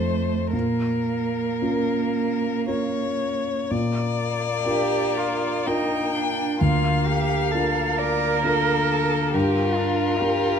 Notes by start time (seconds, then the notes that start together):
Already playing: F2 A3 D#4 F4 A4 C5
0.53 A#2 A#3 A#4
1.62 C#4 F4 A#4
2.68 C#4 F4 A#4 C#5
3.70 A#2 A#3 D5
4.65 D4 F4 G4 A#4
5.17 F4
5.67 D4 D#4 F4 A#4 G5
6.15 D4
6.60 D2 A#3 F4 F5
7.07 G4
7.52 D4 F4 A4 A#4
7.98 A#4 D5
8.44 D4 F4 A4 A#4
9.34 G2 F4 G4 A#4
9.76 D4
10.21 D4 F4 G4 A#4